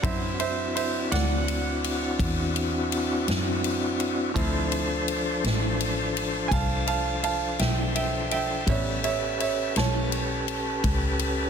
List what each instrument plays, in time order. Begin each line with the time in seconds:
0.02 double bass F#2, upright piano F#3 C4 E4 C5 E5, tonewheel organ C4 D4 E4 F#4, kick, ride
0.40 upright piano C5 E5, ride
0.75 upright piano C5 E5, ride
1.11 double bass D2, upright piano D5 F#5, snare, ride
1.48 ride
1.84 ride
2.20 double bass E2, kick, ride
2.56 ride
2.92 ride
3.28 double bass F#2, snare, ride
3.64 ride
4.00 ride
4.34 double bass D2, upright piano F3 C4 E4, tonewheel organ F3 D4 A4 C5, kick, ride
4.72 ride
5.08 ride
5.44 double bass A1, snare, ride
5.80 ride
6.17 ride
6.48 double bass C2, upright piano G#5, kick, ride
6.53 upright piano F5 A5, snare
6.87 upright piano F5 A5, ride
7.23 upright piano F5 A5, ride
7.59 double bass B1, upright piano E5 G5, snare, ride
7.95 upright piano E5 G5, ride
8.31 upright piano E5 G5, ride
8.65 double bass A1, upright piano G3 B3 C#5, tonewheel organ C#4 G4 A4 B4, kick, ride
8.69 upright piano C#4 E5
9.04 upright piano C#5 E5, ride
9.40 upright piano C#5 E5, ride
9.76 double bass B1, upright piano C#5 A5, snare, ride
10.12 ride
10.48 ride
10.84 double bass C#2, kick, ride
11.19 ride